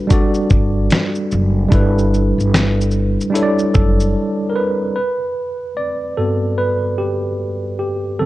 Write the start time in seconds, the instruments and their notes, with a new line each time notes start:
Already playing: tine electric piano G3 D4 F#4 A4 B4
0.07 tine electric piano G3 D4 F#4, kick, closed hi-hat, shaker
0.12 tine electric piano A4 D5
0.34 shaker
0.50 upright bass G1, kick, shaker
0.90 snare, closed hi-hat, shaker
1.15 shaker
1.31 upright bass F#1, shaker
1.69 upright bass G1, tine electric piano G3 D4 E4, kick, closed hi-hat, shaker
1.74 tine electric piano A4 B4
1.99 shaker
2.14 shaker
2.38 upright bass G1, shaker
2.54 snare, closed hi-hat, shaker
2.81 shaker
2.91 shaker
3.21 shaker
3.30 tine electric piano G3 D4 E4
3.35 tine electric piano A4 C#5, closed hi-hat, shaker
3.43 tine electric piano D5
3.59 shaker
3.74 upright bass F#1, tine electric piano A4, kick, shaker
4.00 shaker
4.49 tine electric piano A#4
4.55 tine electric piano B4
4.96 tine electric piano B4
5.77 tine electric piano D5
6.17 tine electric piano G2 B3 F#4 A4
6.58 tine electric piano B4
6.98 tine electric piano G4
7.79 tine electric piano G4
8.20 tine electric piano D3 F#3 C4 A4